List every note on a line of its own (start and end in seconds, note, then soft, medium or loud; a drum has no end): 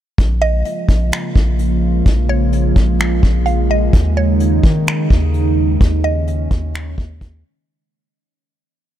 0.18 0.63 A#1 loud
0.18 3.90 C#3 medium
0.18 3.90 F3 medium
0.18 7.64 G#3 medium
0.18 7.64 A#3 medium
0.18 3.90 F4 medium
0.18 kick loud
0.18 closed hi-hat medium
0.42 1.55 D#5 loud
0.65 closed hi-hat medium
0.89 1.11 A#1 loud
0.89 kick medium
0.89 closed hi-hat medium
1.12 finger snap loud
1.12 closed hi-hat medium
1.36 2.03 A#1 loud
1.36 kick medium
1.59 closed hi-hat medium
2.06 2.73 A#1 loud
2.06 kick loud
2.06 closed hi-hat medium
2.29 3.43 C#5 medium
2.53 closed hi-hat medium
2.76 3.21 A#1 loud
2.76 kick medium
2.76 closed hi-hat medium
2.99 finger snap loud
2.99 closed hi-hat medium
3.23 3.91 A#1 loud
3.23 kick loud
3.46 3.68 F5 medium
3.46 closed hi-hat medium
3.71 3.93 D#5 medium
3.93 4.61 D#2 loud
3.93 7.64 C#3 medium
3.93 7.65 D#3 medium
3.93 5.79 D#4 medium
3.93 kick loud
3.93 closed hi-hat medium
4.17 5.30 C#5 medium
4.40 closed hi-hat medium
4.63 5.09 D#3 loud
4.63 kick loud
4.63 closed hi-hat medium
4.87 finger snap loud
4.87 closed hi-hat medium
5.10 5.78 D#2 loud
5.10 kick loud
5.34 closed hi-hat medium
5.81 6.48 D#2 loud
5.81 7.66 C#4 medium
5.81 kick loud
5.81 closed hi-hat medium
6.04 7.64 D#5 medium
6.28 closed hi-hat medium
6.51 6.96 D#2 loud
6.51 kick medium
6.51 closed hi-hat medium
6.74 finger snap loud
6.74 closed hi-hat medium
6.98 7.20 D#2 loud
6.98 kick loud
7.21 7.44 D#2 loud
7.21 kick medium
7.21 closed hi-hat medium